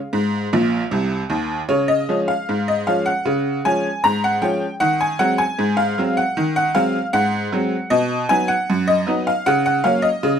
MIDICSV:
0, 0, Header, 1, 2, 480
1, 0, Start_track
1, 0, Tempo, 778210
1, 79, Time_signature, 2, 2, 24, 8
1, 6412, End_track
2, 0, Start_track
2, 0, Title_t, "Honky-tonk piano"
2, 0, Program_c, 0, 3
2, 0, Note_on_c, 0, 77, 80
2, 80, Note_on_c, 0, 44, 75
2, 284, Note_off_c, 0, 44, 0
2, 326, Note_on_c, 0, 46, 71
2, 328, Note_on_c, 0, 34, 68
2, 504, Note_off_c, 0, 46, 0
2, 506, Note_off_c, 0, 34, 0
2, 563, Note_on_c, 0, 36, 68
2, 566, Note_on_c, 0, 48, 69
2, 743, Note_off_c, 0, 36, 0
2, 745, Note_off_c, 0, 48, 0
2, 778, Note_off_c, 0, 77, 0
2, 799, Note_on_c, 0, 51, 63
2, 801, Note_on_c, 0, 39, 67
2, 981, Note_off_c, 0, 51, 0
2, 982, Note_off_c, 0, 39, 0
2, 1040, Note_on_c, 0, 49, 78
2, 1040, Note_on_c, 0, 73, 81
2, 1160, Note_on_c, 0, 75, 75
2, 1161, Note_off_c, 0, 73, 0
2, 1245, Note_off_c, 0, 49, 0
2, 1288, Note_on_c, 0, 53, 45
2, 1290, Note_on_c, 0, 56, 45
2, 1293, Note_on_c, 0, 61, 51
2, 1353, Note_off_c, 0, 75, 0
2, 1406, Note_on_c, 0, 77, 73
2, 1419, Note_off_c, 0, 53, 0
2, 1420, Note_off_c, 0, 56, 0
2, 1422, Note_off_c, 0, 61, 0
2, 1535, Note_on_c, 0, 44, 69
2, 1597, Note_off_c, 0, 77, 0
2, 1654, Note_on_c, 0, 75, 70
2, 1734, Note_off_c, 0, 44, 0
2, 1769, Note_off_c, 0, 75, 0
2, 1770, Note_on_c, 0, 77, 74
2, 1776, Note_on_c, 0, 53, 44
2, 1776, Note_on_c, 0, 56, 44
2, 1779, Note_on_c, 0, 61, 45
2, 1886, Note_on_c, 0, 78, 76
2, 1887, Note_off_c, 0, 77, 0
2, 1904, Note_off_c, 0, 53, 0
2, 1905, Note_off_c, 0, 56, 0
2, 1907, Note_off_c, 0, 61, 0
2, 2007, Note_on_c, 0, 49, 78
2, 2209, Note_off_c, 0, 49, 0
2, 2227, Note_off_c, 0, 78, 0
2, 2252, Note_on_c, 0, 80, 88
2, 2255, Note_on_c, 0, 53, 49
2, 2255, Note_on_c, 0, 56, 45
2, 2261, Note_on_c, 0, 61, 52
2, 2383, Note_off_c, 0, 53, 0
2, 2384, Note_off_c, 0, 56, 0
2, 2388, Note_off_c, 0, 61, 0
2, 2476, Note_off_c, 0, 80, 0
2, 2491, Note_on_c, 0, 82, 97
2, 2499, Note_on_c, 0, 44, 67
2, 2607, Note_off_c, 0, 82, 0
2, 2615, Note_on_c, 0, 78, 77
2, 2696, Note_off_c, 0, 44, 0
2, 2725, Note_on_c, 0, 53, 50
2, 2725, Note_on_c, 0, 79, 68
2, 2729, Note_off_c, 0, 78, 0
2, 2729, Note_on_c, 0, 56, 45
2, 2734, Note_on_c, 0, 61, 47
2, 2857, Note_off_c, 0, 53, 0
2, 2860, Note_off_c, 0, 56, 0
2, 2863, Note_off_c, 0, 61, 0
2, 2916, Note_off_c, 0, 79, 0
2, 2962, Note_on_c, 0, 78, 95
2, 2965, Note_on_c, 0, 51, 83
2, 3083, Note_off_c, 0, 78, 0
2, 3088, Note_on_c, 0, 80, 85
2, 3168, Note_off_c, 0, 51, 0
2, 3202, Note_on_c, 0, 78, 92
2, 3203, Note_on_c, 0, 54, 50
2, 3205, Note_off_c, 0, 80, 0
2, 3208, Note_on_c, 0, 56, 50
2, 3208, Note_on_c, 0, 60, 51
2, 3320, Note_on_c, 0, 80, 88
2, 3323, Note_off_c, 0, 78, 0
2, 3335, Note_off_c, 0, 54, 0
2, 3338, Note_off_c, 0, 56, 0
2, 3339, Note_off_c, 0, 60, 0
2, 3446, Note_on_c, 0, 44, 77
2, 3549, Note_off_c, 0, 80, 0
2, 3558, Note_on_c, 0, 77, 84
2, 3648, Note_off_c, 0, 44, 0
2, 3689, Note_on_c, 0, 54, 44
2, 3693, Note_on_c, 0, 56, 46
2, 3696, Note_on_c, 0, 60, 56
2, 3788, Note_off_c, 0, 77, 0
2, 3806, Note_on_c, 0, 78, 78
2, 3819, Note_off_c, 0, 54, 0
2, 3822, Note_off_c, 0, 56, 0
2, 3824, Note_off_c, 0, 60, 0
2, 3928, Note_on_c, 0, 51, 85
2, 3996, Note_off_c, 0, 78, 0
2, 4047, Note_on_c, 0, 78, 89
2, 4129, Note_off_c, 0, 51, 0
2, 4161, Note_on_c, 0, 54, 49
2, 4161, Note_on_c, 0, 77, 97
2, 4164, Note_off_c, 0, 78, 0
2, 4165, Note_on_c, 0, 56, 52
2, 4168, Note_on_c, 0, 60, 61
2, 4292, Note_off_c, 0, 54, 0
2, 4296, Note_off_c, 0, 56, 0
2, 4298, Note_off_c, 0, 60, 0
2, 4353, Note_off_c, 0, 77, 0
2, 4399, Note_on_c, 0, 78, 95
2, 4401, Note_on_c, 0, 44, 80
2, 4604, Note_off_c, 0, 44, 0
2, 4641, Note_on_c, 0, 54, 54
2, 4644, Note_on_c, 0, 56, 52
2, 4647, Note_on_c, 0, 60, 53
2, 4772, Note_off_c, 0, 54, 0
2, 4774, Note_off_c, 0, 56, 0
2, 4777, Note_off_c, 0, 60, 0
2, 4854, Note_off_c, 0, 78, 0
2, 4875, Note_on_c, 0, 75, 94
2, 4877, Note_on_c, 0, 47, 89
2, 5081, Note_off_c, 0, 47, 0
2, 5104, Note_off_c, 0, 75, 0
2, 5115, Note_on_c, 0, 80, 104
2, 5121, Note_on_c, 0, 54, 54
2, 5122, Note_on_c, 0, 59, 54
2, 5123, Note_on_c, 0, 63, 56
2, 5231, Note_on_c, 0, 78, 79
2, 5236, Note_off_c, 0, 80, 0
2, 5251, Note_off_c, 0, 54, 0
2, 5252, Note_off_c, 0, 59, 0
2, 5253, Note_off_c, 0, 63, 0
2, 5364, Note_on_c, 0, 42, 83
2, 5462, Note_off_c, 0, 78, 0
2, 5474, Note_on_c, 0, 75, 93
2, 5565, Note_off_c, 0, 42, 0
2, 5594, Note_on_c, 0, 54, 46
2, 5597, Note_on_c, 0, 59, 56
2, 5601, Note_on_c, 0, 63, 55
2, 5703, Note_off_c, 0, 75, 0
2, 5717, Note_on_c, 0, 77, 83
2, 5726, Note_off_c, 0, 54, 0
2, 5728, Note_off_c, 0, 59, 0
2, 5731, Note_off_c, 0, 63, 0
2, 5836, Note_off_c, 0, 77, 0
2, 5836, Note_on_c, 0, 78, 100
2, 5837, Note_on_c, 0, 49, 88
2, 5947, Note_off_c, 0, 78, 0
2, 5957, Note_on_c, 0, 78, 80
2, 6041, Note_off_c, 0, 49, 0
2, 6068, Note_on_c, 0, 77, 89
2, 6072, Note_on_c, 0, 54, 52
2, 6076, Note_off_c, 0, 78, 0
2, 6076, Note_on_c, 0, 58, 48
2, 6079, Note_on_c, 0, 61, 61
2, 6182, Note_on_c, 0, 75, 85
2, 6192, Note_off_c, 0, 77, 0
2, 6206, Note_off_c, 0, 54, 0
2, 6208, Note_off_c, 0, 58, 0
2, 6211, Note_off_c, 0, 61, 0
2, 6310, Note_on_c, 0, 49, 86
2, 6412, Note_off_c, 0, 49, 0
2, 6412, Note_off_c, 0, 75, 0
2, 6412, End_track
0, 0, End_of_file